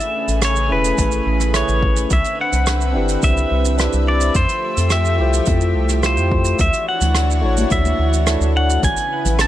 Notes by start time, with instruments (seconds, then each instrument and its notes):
Already playing: analog synth pad C#3 A3 G#4 B4, pedal steel guitar E5
0.00 closed hi-hat, shaker
0.28 analog synth bass A1, closed hi-hat, shaker
0.41 pedal steel guitar C#5, cross-stick, closed hi-hat, shaker
0.56 shaker
0.68 analog synth bass E1, tine electric piano A3 C#4 E4 G#4 B4, pedal steel guitar B4
0.84 closed hi-hat, shaker
0.98 analog synth bass A1, kick, closed hi-hat, shaker
1.12 shaker
1.26 analog synth bass A1
1.40 cross-stick, closed hi-hat, shaker
1.53 tine electric piano A3 C#4 E4 G#4 B4, pedal steel guitar C#5, cross-stick, closed hi-hat, shaker
1.68 analog synth bass A1, shaker
1.82 kick
1.96 closed hi-hat, shaker
2.10 analog synth bass C2, analog synth pad D3 C4 E5, pedal steel guitar E5, kick, closed hi-hat, shaker
2.24 closed hi-hat, shaker
2.41 pedal steel guitar F#5
2.52 analog synth bass C2, closed hi-hat, shaker
2.66 cross-stick, closed hi-hat, shaker
2.81 shaker
2.93 analog synth bass G1, tine electric piano C4 D4 E4 G4
2.97 tine electric piano B4
3.09 closed hi-hat, shaker
3.22 analog synth bass C2, pedal steel guitar E5, kick, closed hi-hat, shaker
3.37 shaker
3.51 analog synth bass C2
3.65 closed hi-hat, shaker
3.77 tine electric piano C4 D4 E4 G4 B4, cross-stick, closed hi-hat, shaker
3.93 analog synth bass C2, shaker
4.08 pedal steel guitar D5
4.21 closed hi-hat, shaker
4.34 analog synth bass F2, analog synth pad F3 A3 G4, pedal steel guitar C5, kick, closed hi-hat, shaker
4.49 closed hi-hat, shaker
4.77 analog synth bass F2, closed hi-hat, shaker
4.90 pedal steel guitar E5, cross-stick, closed hi-hat, shaker
5.05 shaker
5.18 analog synth bass C2, tine electric piano A3 E4 F4 G4
5.22 tine electric piano C5
5.33 closed hi-hat, shaker
5.46 analog synth bass F2, kick, closed hi-hat, shaker
5.61 shaker
5.74 analog synth bass C2
5.89 cross-stick, closed hi-hat, shaker
6.03 tine electric piano A3 E4 F4 G4 C5, pedal steel guitar C5, cross-stick, closed hi-hat, shaker
6.17 analog synth bass F2, shaker
6.32 kick
6.45 closed hi-hat, shaker
6.59 analog synth bass D2, analog synth pad E3 D4 F#4 C#5, pedal steel guitar E5, kick, closed hi-hat, shaker
6.73 closed hi-hat, shaker
6.88 pedal steel guitar F#5
7.01 analog synth bass D2, closed hi-hat, low conga, shaker
7.15 cross-stick, closed hi-hat, shaker
7.31 shaker
7.41 analog synth bass A1, tine electric piano A3 D4 E4 F#4
7.46 tine electric piano C#5
7.57 closed hi-hat, high conga, shaker
7.70 analog synth bass D2, pedal steel guitar E5, kick, closed hi-hat, shaker
7.85 high conga, shaker
7.99 analog synth bass D2
8.13 closed hi-hat, shaker
8.27 tine electric piano A3 D4 E4 F#4 C#5, cross-stick, closed hi-hat, shaker
8.41 analog synth bass D2, shaker
8.57 pedal steel guitar F#5
8.69 closed hi-hat, shaker
8.83 analog synth bass A1, analog synth pad C#3 B3 E4 B4, pedal steel guitar G#5, kick, closed hi-hat, shaker
8.97 closed hi-hat, shaker
9.25 analog synth bass A1, closed hi-hat, low conga, shaker
9.39 pedal steel guitar A5, cross-stick, closed hi-hat, shaker